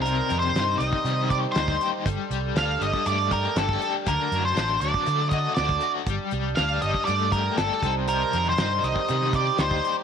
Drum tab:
HH |x-x-x-x-x-x-x-x-|x-x-x-x-x-x-x-x-|x-x-x-x-x-x-x-x-|x-x-x-x-x-x-x-x-|
SD |----o-------o---|----o--o----o---|----o-------o---|----o-------o---|
BD |-------o--o--o--|o------o--o--o--|o------o--o--o--|o------o--o---o-|

HH |x-x-x-x-x-x-x-x-|
SD |----o----o--o---|
BD |-------o--o--o--|